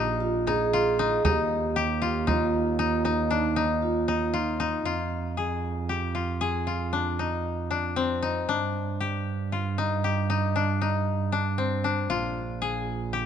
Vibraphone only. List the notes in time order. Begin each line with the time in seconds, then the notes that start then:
Already playing: G4
0.20 F4
0.47 G#4
1.25 G4
2.28 F4
3.30 D#4
3.82 F4
4.34 D#4